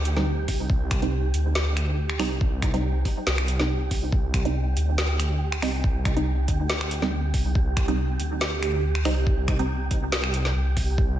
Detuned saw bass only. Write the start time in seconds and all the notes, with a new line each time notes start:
Already playing: D2
0.48 C2
0.70 C2
1.34 D2
2.20 C2
3.27 C2
3.91 C2
4.13 C2
4.77 D2
5.62 C2
6.48 D2
7.34 C2
7.55 C2
8.20 D2
9.05 C2
9.91 C2
10.55 C2
10.98 C2